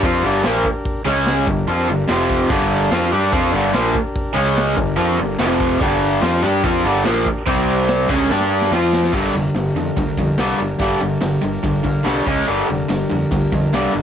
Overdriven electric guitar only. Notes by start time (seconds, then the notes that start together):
0.03 F3 C4 F4
0.22 G2 D3 G3
0.44 A#2 F3 A#3
1.05 C#3 G#3 C#4
1.47 G2 D3
1.68 F3 C4 F4
1.88 G2 D3
2.08 F2 C3 F3
2.49 G2 D3 G3
2.91 F3 C4 F4
3.12 G3 D4 G4
3.32 F3 C4 F4
3.52 G2 D3 G3
3.73 A#2 F3 A#3
4.34 C#3 G#3 C#4
4.75 G2 D3
4.96 F3 C4 F4
5.18 G2 D3
5.39 F2 C3 F3
5.80 G2 D3 G3
6.21 F3 C4 F4
6.42 G3 D4 G4
6.63 F3 C4 F4
6.84 G2 D3 G3
7.04 A#2 F3 A#3
7.47 C3 G3 C4
8.09 C#3 G#3 C#4
8.30 G3 D4 G4
8.72 F3 C4 F4
9.13 G2 D3 G3
9.34 G2 D3
9.54 G2 D3
9.76 G2 D3
9.97 G2 D3
10.18 G2 D3
10.38 G2 D3 G3
10.59 G2 D3
10.79 G2 D3 G3
11.00 G2 D3
11.21 G2 D3
11.42 G2 D3
11.63 G2 D3
11.84 G2 D3
12.04 G2 D3 G3
12.25 C#3 G#3 C#4
12.46 G2 D3 G3
12.68 G2 D3
12.88 G2 D3
13.09 G2 D3
13.31 G2 D3
13.52 G2 D3
13.73 G2 D3 G3
13.94 G2 D3